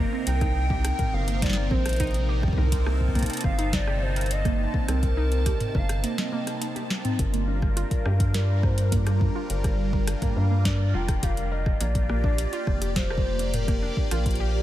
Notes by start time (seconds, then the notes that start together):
Already playing: C3 C4 D#4 A#4
0.13 C4
0.27 C2 G5, closed hi-hat
0.41 D#4, kick, cross-stick, closed hi-hat
0.70 G4, kick
0.85 cross-stick, closed hi-hat
0.99 A#4, kick, closed hi-hat, mid tom
1.13 G1 F5
1.28 A#3, closed hi-hat
1.42 D5, kick, cross-stick, snare, closed hi-hat
1.46 snare
1.50 snare
1.53 A#3, snare
1.71 A#1 C4 C5, kick
1.86 cross-stick, closed hi-hat
1.89 closed hi-hat
1.93 closed hi-hat
1.96 D#4, kick, closed hi-hat
2.00 closed hi-hat
2.04 closed hi-hat
2.07 closed hi-hat
2.11 closed hi-hat
2.14 closed hi-hat
2.29 G4
2.43 kick, cross-stick
2.48 kick
2.53 kick
2.58 C2 A#4 A5, kick
2.62 kick
2.67 kick
2.72 kick, closed hi-hat
2.87 A#3, cross-stick
3.01 kick
3.08 kick
3.15 A#3, kick, closed hi-hat
3.19 kick, closed hi-hat
3.23 closed hi-hat
3.26 closed hi-hat
3.30 C4, closed hi-hat
3.33 closed hi-hat
3.37 closed hi-hat
3.41 G1 F5, kick, cross-stick, closed hi-hat
3.59 D#4, closed hi-hat
3.73 D5, kick, snare, closed hi-hat
3.87 G4, cross-stick
4.02 C5
4.16 A#4, closed hi-hat
4.21 closed hi-hat
4.26 closed hi-hat
4.31 D#5, closed hi-hat
4.45 A#3, kick, cross-stick, closed hi-hat
4.74 A#3, kick
4.88 C2 C4 A#4, cross-stick, closed hi-hat
5.03 kick, closed hi-hat
5.17 D#4
5.32 closed hi-hat
5.46 G4, kick, cross-stick, closed hi-hat
5.60 closed hi-hat, mid tom
5.75 G1 A#4 F5, kick
5.89 cross-stick, closed hi-hat
6.04 A#3 D#5, closed hi-hat
6.18 snare, closed hi-hat
6.32 A#3
6.47 A#3, cross-stick, closed hi-hat
6.61 D#4, closed hi-hat
6.76 G4, closed hi-hat, high tom
6.90 snare
7.05 C4, closed hi-hat, mid tom
7.19 G1 G3 D4 F4 A#4, kick, closed hi-hat
7.33 A#3, closed hi-hat
7.48 D4
7.62 kick, cross-stick
7.77 F4, closed hi-hat
7.91 kick, closed hi-hat
8.05 G2 G4 F5, cross-stick
8.20 kick, closed hi-hat
8.34 A#4 D5, snare, closed hi-hat
8.63 A#3 C5, kick, cross-stick
8.78 closed hi-hat
8.92 A#3 A#4, kick, closed hi-hat, mid tom
9.06 D4, cross-stick, closed hi-hat
9.21 kick
9.35 F4
9.50 G1 A#4, closed hi-hat
9.64 G4, kick, cross-stick, closed hi-hat
9.93 A#4, kick
10.07 cross-stick, closed hi-hat
10.22 A#3, kick, closed hi-hat, mid tom
10.36 G2 F5
10.51 A#3
10.65 D4 D5, kick, cross-stick, snare, closed hi-hat
10.94 F1 F4 G5
11.08 kick, cross-stick, closed hi-hat
11.16 G5
11.23 G4 F5, kick, closed hi-hat
11.37 closed hi-hat
11.52 A#4 D#5
11.66 kick, cross-stick
11.80 A#1 A#3 F4 G4 D5, closed hi-hat
11.95 kick, closed hi-hat
12.10 A#3, cross-stick
12.24 D4, kick
12.38 closed hi-hat
12.53 F4, closed hi-hat
12.67 F1, kick, cross-stick
12.82 G4, closed hi-hat
12.96 C5, kick, snare, closed hi-hat
13.10 A#4, cross-stick
13.18 kick
13.39 A#3, closed hi-hat
13.54 A#4, closed hi-hat, mid tom
13.68 A#3, kick, cross-stick, closed hi-hat
13.82 D4
13.97 kick
14.11 A#1 F4 A#4, cross-stick, closed hi-hat
14.26 kick, closed hi-hat
14.31 closed hi-hat
14.35 closed hi-hat
14.40 G4